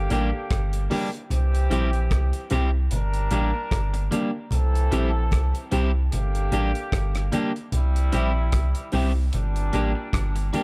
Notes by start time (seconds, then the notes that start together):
Already playing: D3 A#3 G4
0.10 A1 G3 A#3 D4 G4, closed hi-hat, low conga
0.50 G1, kick, cross-stick, closed hi-hat
0.73 closed hi-hat
0.90 G3 A#3 D4 G4, open hi-hat, high conga
1.14 closed hi-hat
1.30 C2 E3 C4 G4, closed hi-hat, low conga
1.55 closed hi-hat
1.70 A#1 G3 C4 E4 G4, closed hi-hat, low conga
1.93 closed hi-hat
2.10 C2, kick, cross-stick, closed hi-hat, high conga
2.33 closed hi-hat
2.50 C2 G3 C4 E4 G4, closed hi-hat, low conga
2.91 G1 G3 D4 A#4, closed hi-hat, low conga
3.14 closed hi-hat
3.31 A1 G3 A#3 D4 G4, closed hi-hat, low conga
3.71 G1, kick, cross-stick, closed hi-hat
3.94 muted clean electric guitar stroke, closed hi-hat
4.11 G3 A#3 D4 G4, closed hi-hat, high conga
4.51 C2 E3 C4 A4, closed hi-hat, low conga
4.75 closed hi-hat
4.91 A#1 G3 C4 E4 G4, closed hi-hat, low conga
5.31 C2, kick, cross-stick, closed hi-hat, high conga
5.55 closed hi-hat
5.71 C2 G3 C4 E4 G4, closed hi-hat, low conga
6.12 G1 D3 A#3 G4, closed hi-hat, low conga
6.35 closed hi-hat
6.52 A1 G3 A#3 D4 G4, closed hi-hat, low conga
6.75 closed hi-hat
6.92 G1, kick, cross-stick, closed hi-hat
7.15 cross-stick, closed hi-hat
7.32 G3 A#3 D4 G4, closed hi-hat, high conga
7.56 closed hi-hat
7.72 C2 C3 G3 E4, closed hi-hat, low conga
7.96 closed hi-hat
8.12 A#1 G3 C4 E4 G4, closed hi-hat, low conga
8.52 C2, kick, cross-stick, closed hi-hat, high conga
8.75 closed hi-hat
8.92 C2 G3 C4 E4 G4, open hi-hat, low conga
9.33 G1 A#2 G3 D4, closed hi-hat, low conga
9.56 closed hi-hat
9.73 A1 G3 A#3 D4 G4, closed hi-hat, low conga
10.13 G1, kick, cross-stick, closed hi-hat
10.36 muted clean electric guitar stroke, closed hi-hat
10.53 G3 A#3 D4 G4, closed hi-hat, high conga